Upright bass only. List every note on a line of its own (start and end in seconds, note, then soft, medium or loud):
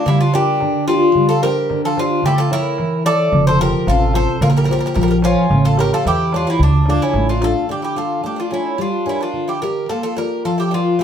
3.32 3.71 F1 medium
3.87 4.25 A1 medium
4.41 4.80 A#1 medium
4.96 5.34 A#1 medium
5.51 5.89 A1 medium
6.05 6.44 E2 medium
6.60 6.98 D2 medium
7.14 7.52 A1 medium